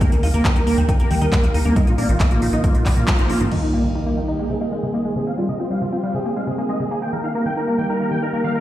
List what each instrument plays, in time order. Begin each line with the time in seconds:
0.01 acid bass A#3, supersaw synth G5, kick, closed hi-hat
0.12 analog synth bass D#2, acid bass D#3, supersaw synth A#4, closed hi-hat
0.23 analog synth bass D#2, acid bass D#4, supersaw synth F5, open hi-hat
0.34 analog synth bass D#2, acid bass A#3, supersaw synth A#4, closed hi-hat
0.45 acid bass D#3, supersaw synth G5, kick, clap, closed hi-hat
0.56 analog synth bass D#2, acid bass D#4, supersaw synth A#4, closed hi-hat
0.67 analog synth bass D#2, acid bass A#3, supersaw synth A#4, open hi-hat
0.78 analog synth bass D#2, acid bass D#3, supersaw synth G5, closed hi-hat
0.89 acid bass D#4, supersaw synth A#4, kick, closed hi-hat
1.00 analog synth bass F2, acid bass A#3, supersaw synth A#4, closed hi-hat
1.11 analog synth bass D#2, acid bass D#3, supersaw synth G5, open hi-hat
1.22 analog synth bass D#2, acid bass D#4, supersaw synth A#4, closed hi-hat
1.32 acid bass A#3, supersaw synth A#4, kick, clap, closed hi-hat
1.43 analog synth bass D#2, acid bass D#3, supersaw synth F5, closed hi-hat
1.54 analog synth bass D#2, acid bass D#4, supersaw synth A#4, open hi-hat
1.65 analog synth bass D#2, acid bass A#3, supersaw synth A#4, mid tom
1.76 acid bass D#3, supersaw synth D#5, kick, closed hi-hat
1.87 analog synth bass A#1, acid bass D#4, supersaw synth F4, closed hi-hat
1.98 analog synth bass A#1, acid bass A#3, supersaw synth D5, open hi-hat, mid tom
2.09 analog synth bass A#1, acid bass D#3, supersaw synth F4, closed hi-hat
2.20 acid bass D#4, supersaw synth D#5, kick, clap, closed hi-hat
2.31 analog synth bass A#1, acid bass A#3, supersaw synth F4, closed hi-hat
2.42 analog synth bass A#1, acid bass D#3, supersaw synth F4, open hi-hat
2.53 analog synth bass A#1, acid bass D#4, supersaw synth D#5, closed hi-hat
2.64 acid bass A#3, supersaw synth F4, kick, closed hi-hat
2.75 analog synth bass A#2, acid bass D#3, supersaw synth F4, closed hi-hat
2.86 analog synth bass A#1, acid bass D#4, supersaw synth D5, kick, clap, open hi-hat
2.97 analog synth bass A#2, acid bass A#3, supersaw synth F4, closed hi-hat
3.08 acid bass D#3, supersaw synth F4, kick, clap, closed hi-hat
3.19 analog synth bass A#1, acid bass D#4, supersaw synth C5, closed hi-hat
3.30 analog synth bass A#1, acid bass A#3, supersaw synth F4, open hi-hat, mid tom
3.40 analog synth bass G#1, acid bass D#3, supersaw synth F4, closed hi-hat, mid tom
3.51 acid bass D#3, supersaw synth D#5, crash, impact
3.62 acid bass D#4, supersaw synth D#4
3.73 acid bass A#3, supersaw synth D5
3.84 acid bass D#3, supersaw synth D#4
3.95 acid bass D#4, supersaw synth D#5
4.06 acid bass A#3, supersaw synth D#4
4.17 acid bass D#3, supersaw synth D#4
4.28 acid bass D#4, supersaw synth D#5
4.39 acid bass G#3, supersaw synth G#4
4.50 acid bass C3, supersaw synth G#4
4.61 acid bass A#3, supersaw synth D#5
4.72 acid bass G#3, supersaw synth G#4
4.83 acid bass C3, supersaw synth G#4
4.94 acid bass A#3, supersaw synth D#5
5.05 acid bass G#3, supersaw synth G#4
5.16 acid bass C3, supersaw synth G#4
5.27 acid bass C4, supersaw synth F5
5.38 acid bass G3, supersaw synth F4
5.49 acid bass C3, supersaw synth D#5
5.60 acid bass C4, supersaw synth F4
5.71 acid bass G3, supersaw synth F5
5.81 acid bass C3, supersaw synth F4
5.92 acid bass C4, supersaw synth F4
6.03 acid bass G3, supersaw synth F5
6.14 acid bass C3, supersaw synth G#4
6.25 acid bass A#3, supersaw synth G#4
6.36 acid bass G#3, supersaw synth F5
6.47 acid bass C3, supersaw synth G#4
6.58 acid bass A#3, supersaw synth G#4
6.69 acid bass G#3, supersaw synth D#5
6.80 acid bass C3, supersaw synth G#4
6.91 acid bass A#3, supersaw synth G#4
7.02 acid bass A#3, supersaw synth G5
7.13 acid bass D#3, supersaw synth A#4
7.24 acid bass D#4, supersaw synth F5
7.35 acid bass A#3, supersaw synth A#4
7.46 acid bass D#3, supersaw synth G5
7.57 acid bass D#4, supersaw synth A#4
7.67 acid bass A#3, supersaw synth A#4
7.78 acid bass D#3, supersaw synth G5
7.89 acid bass D#4, supersaw synth A#4
8.00 acid bass A#3, supersaw synth A#4
8.11 acid bass D#3, supersaw synth G5
8.22 acid bass D#4, supersaw synth A#4
8.33 acid bass A#3, supersaw synth A#4
8.44 acid bass D#3, supersaw synth F5
8.55 acid bass D#4, supersaw synth A#4